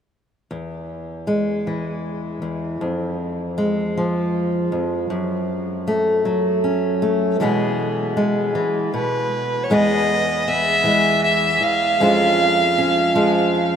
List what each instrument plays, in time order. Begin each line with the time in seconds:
0.51 steel-string acoustic guitar E2
1.27 steel-string acoustic guitar G#3
1.67 steel-string acoustic guitar E3
2.42 steel-string acoustic guitar E2
2.81 steel-string acoustic guitar F2
3.58 steel-string acoustic guitar G#3
3.97 steel-string acoustic guitar F3
4.72 steel-string acoustic guitar F2
5.10 steel-string acoustic guitar F#2
5.88 steel-string acoustic guitar A3
6.25 steel-string acoustic guitar F#3
6.64 steel-string acoustic guitar C#4
7.02 steel-string acoustic guitar A3
7.40 steel-string acoustic guitar B2 E3 G#3 B3 G#4
8.17 steel-string acoustic guitar G#3
8.55 steel-string acoustic guitar E3
8.94 steel-string acoustic guitar B2, fiddle B4
9.63 fiddle C#5
9.70 steel-string acoustic guitar E2 G#3 B3 G#4, fiddle D#5
10.42 fiddle D#5
10.48 steel-string acoustic guitar B3, fiddle E5
10.84 steel-string acoustic guitar E3 G#3
11.24 fiddle E5
11.61 steel-string acoustic guitar E2, fiddle F5
12.00 steel-string acoustic guitar F2 G#3 C#4 F4
12.78 steel-string acoustic guitar C#4
13.15 steel-string acoustic guitar F3 G#3